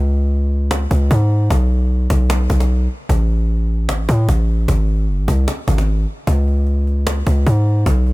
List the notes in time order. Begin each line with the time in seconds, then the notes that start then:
Already playing: C#2
0.71 cajon slap
0.91 C#2, cajon bass
1.11 G#2, cajon bass
1.50 B1, cajon bass
2.10 B1, cajon bass
2.30 cajon slap
2.50 B1, cajon bass
2.60 cajon slap
3.09 A1, cajon bass
3.89 G#1, cajon slap
3.99 A1
4.09 A2, cajon bass
4.29 A1, cajon bass
4.68 G#1, cajon bass
5.08 F#1
5.19 G#1
5.28 C2, cajon bass
5.48 cajon slap
5.68 G#1, cajon bass
5.78 cajon slap
6.27 C#2, cajon bass
6.48 cajon slap
6.67 cajon slap
6.87 cajon slap
7.07 cajon slap
7.27 C#2, cajon bass
7.46 G#2, cajon bass
7.86 B1, cajon bass
8.07 cajon slap